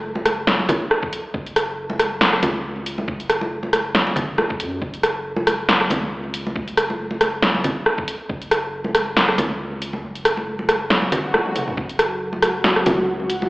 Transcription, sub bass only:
0.00 0.68 F#1 medium
1.34 2.42 F#1 loud
2.43 3.07 C#2 loud
3.08 4.40 F#1 medium
4.38 4.61 E1 medium
4.60 4.80 F#2 medium
4.82 5.89 F#1 loud
5.90 6.54 C#2 loud
6.56 7.63 F#1 medium
8.30 9.37 F#1 loud
9.38 10.02 C#2 medium
10.04 11.11 F#1 medium
11.56 11.76 E1 medium
11.77 12.85 F#1 medium
12.86 13.49 C#2 medium

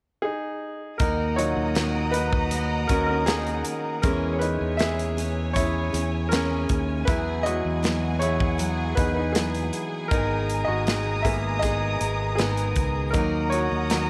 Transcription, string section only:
1.01 4.01 D#5 medium
1.01 4.01 F#5 medium
1.01 4.01 A#5 medium
1.01 4.01 D#6 medium
4.04 7.05 C#5 medium
4.04 13.11 G#5 soft
7.08 13.11 G#4 medium
7.08 10.08 F#5 medium
10.11 13.12 A#5 medium
10.11 13.12 D#6 medium
13.15 14.10 D#5 medium
13.15 14.10 F#5 medium
13.15 14.10 A#5 medium
13.15 14.10 D#6 medium

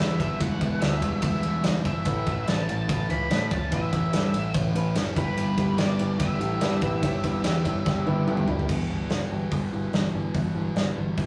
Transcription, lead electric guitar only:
0.00 0.18 E5 medium
0.20 0.39 E5 medium
0.42 0.84 F#5 loud
0.81 1.22 E5 medium
1.23 1.62 E5 medium
1.86 2.50 E5 medium
2.49 2.68 A5 loud
2.70 2.88 A5 medium
2.90 3.11 A5 loud
3.10 3.53 B5 loud
3.52 3.73 A5 loud
3.74 4.52 E5 medium
5.18 5.81 B4 medium
5.78 6.19 D5 medium
6.19 8.23 E5 loud

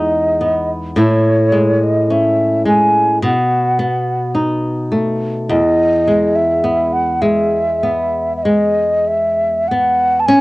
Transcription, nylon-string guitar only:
0.00 0.96 E2 medium
0.00 1.52 G#3 soft
0.00 0.95 D#4 soft
0.41 1.08 B3 soft
0.96 3.21 A2 medium
0.96 3.33 E4 medium
1.52 2.64 G#3 soft
2.10 3.34 C#4 soft
2.65 3.33 G#3 soft
3.22 5.60 B2 medium
3.79 6.07 B3 soft
4.35 5.53 D#4 soft
4.92 5.60 A3 soft
5.50 10.27 E2 medium
6.08 7.21 G#3 soft
6.64 7.82 B3 medium
7.22 8.45 G#3 soft
7.83 9.70 B3 soft
8.45 10.41 G#3 soft
9.71 10.39 B3 soft
10.28 10.41 C#4 medium

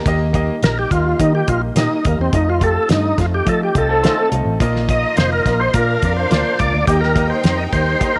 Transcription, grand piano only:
0.06 0.87 D#3 medium
0.06 0.24 A#3 loud
0.06 0.25 G4 loud
0.06 0.26 D#5 loud
0.33 0.52 A#3 loud
0.33 0.53 G4 medium
0.33 0.53 D#5 loud
0.62 0.81 A#3 medium
0.62 0.81 G4 medium
0.62 0.82 D#5 medium
0.91 1.10 A#3 medium
0.91 1.10 G4 medium
0.91 1.11 D#5 medium
1.19 1.38 A#3 medium
1.19 1.38 G4 medium
1.19 1.39 D#5 medium
1.48 1.67 A#3 medium
1.48 1.67 G4 medium
1.48 1.68 D#5 medium
1.76 1.95 A#3 medium
1.76 1.96 G4 medium
1.76 1.96 D#5 loud
2.05 2.24 A#3 medium
2.05 2.24 G4 medium
2.05 2.25 D#5 medium
2.33 2.52 A3 medium
2.33 2.52 F4 medium
2.33 2.53 D#5 loud
2.62 2.80 A3 medium
2.62 2.81 F4 medium
2.62 2.81 G4 medium
2.89 3.08 A3 medium
2.89 3.09 F4 medium
2.89 3.09 D#5 medium
3.18 3.37 A3 medium
3.18 3.37 F4 medium
3.18 3.38 D#5 medium
3.45 3.65 A3 medium
3.45 3.66 F4 medium
3.45 3.66 D#5 medium
3.75 3.94 A3 medium
3.75 3.94 F4 medium
3.75 3.95 D#5 medium
4.04 4.23 A3 loud
4.04 4.23 F4 medium
4.04 4.23 D#5 loud
4.32 4.51 A3 medium
4.32 4.52 F4 medium
4.32 4.52 D#5 medium
4.60 5.42 A#2 medium
4.60 4.79 A#3 loud
4.60 4.80 F4 loud
4.60 4.80 D#5 loud
4.89 5.08 A#3 medium
4.89 5.08 F4 medium
4.89 5.09 D#5 medium
5.18 5.36 A#3 medium
5.18 5.37 F4 medium
5.18 5.37 D#5 medium
5.46 5.65 A#3 medium
5.46 5.65 F4 medium
5.46 5.65 D#5 medium
5.74 6.56 A#2 medium
5.74 5.93 A#3 medium
5.74 5.93 F4 medium
5.74 5.94 D5 medium
6.03 6.22 A#3 medium
6.03 6.22 F4 medium
6.03 6.22 D5 medium
6.30 6.49 A#3 loud
6.30 6.50 F4 medium
6.30 6.50 D5 loud
6.60 6.78 A#3 medium
6.60 6.79 F4 medium
6.60 6.79 D5 medium
6.88 7.70 D#3 medium
6.88 7.07 A#3 loud
6.88 7.07 G4 medium
6.88 7.08 D#5 loud
7.15 7.34 A#3 medium
7.15 7.35 G4 medium
7.15 7.35 D#5 loud
7.44 7.63 A#3 medium
7.44 7.63 G4 medium
7.44 7.63 D#5 medium
7.73 7.92 A#3 medium
7.73 7.92 G4 medium
7.73 7.93 D#5 medium
8.00 8.19 A#3 medium
8.00 8.19 G4 medium
8.00 8.19 D#5 medium

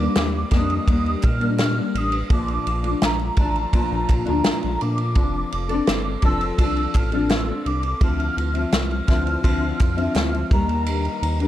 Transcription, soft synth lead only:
0.00 0.55 D6 loud
0.53 1.26 D#6 loud
1.25 1.99 F6 loud
1.98 2.35 D#6 loud
2.33 3.06 D6 loud
3.05 4.83 A#5 medium
4.81 6.24 D6 loud
6.25 6.98 E6 loud
6.96 7.34 F6 loud
7.33 7.68 E6 loud
7.67 8.02 D6 loud
8.04 8.70 F6 loud
8.74 10.48 F6 loud
10.53 11.48 A#5 medium

